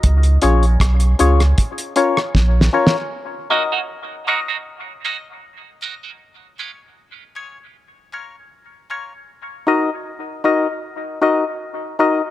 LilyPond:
<<
  \new Staff \with { instrumentName = "Synth stab" } { \time 4/4 \key ees \minor \tempo 4 = 78 r8 <des' f' aes' des''>8 r8 <des' f' aes' des''>8 r8 <des' f' bes' des''>8 r8 <des' f' bes' des''>8 | r8 <ees' ges' bes' ees''>8 r8 <ees' ges' bes' ees''>8 r8 <ees' ges' bes' ees''>8 r8 <ees' ges' bes' ees''>8 | r8 <des' f' aes' des''>8 r8 <des' f' aes' des''>8 r8 <des' f' bes' des''>8 r8 <des' f' bes' des''>8 | r8 <ees' ges' bes' ees''>8 r8 <ees' ges' bes' ees''>8 r8 <ees' ges' bes' ees''>8 r8 <ees' ges' bes' ees''>8 | }
  \new Staff \with { instrumentName = "Clean electric guitar" } { \time 4/4 \key ees \minor r1 | r8 <bes ees' ges'>16 <bes ees' ges'>16 r8 <bes ees' ges'>16 <bes ees' ges'>16 r8 <bes ees' ges'>16 r8. <bes ees' ges'>16 <bes ees' ges'>16 | r8 <aes des' f'>16 r2. r16 | r1 | }
  \new Staff \with { instrumentName = "Sub bass" } { \clef bass \time 4/4 \key ees \minor des,8 bes,,8 ces,8 des,8 r4 bes,,8 r8 | r1 | r1 | r1 | }
  \new DrumStaff \with { instrumentName = "Drums" } \drummode { \time 4/4 <hh bd>16 hh16 hh16 hh16 <hh bd ss>16 hh16 hh16 <hh ss>16 <hh bd>16 hh16 hh16 ss16 \tuplet 3/2 { <bd sn>8 sn8 sn8 } | r4 r4 r4 r4 | r4 r4 r4 r4 | r4 r4 r4 r4 | }
>>